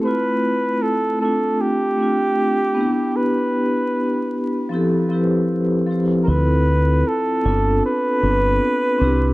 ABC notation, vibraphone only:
X:1
M:4/4
L:1/8
Q:"Swing 16ths" 1/4=77
K:Gmix
V:1 name="Vibraphone"
[A,CEF]3 [A,CDF]2 [A,CDF]2 [B,DEG]- | [B,DEG]2 z2 [F,CEGA] [F,CEGBc]2 [F,CEGc] | [CEFA]3 [B,CDFA]2 [B,CDFB]2 [CDEG] |]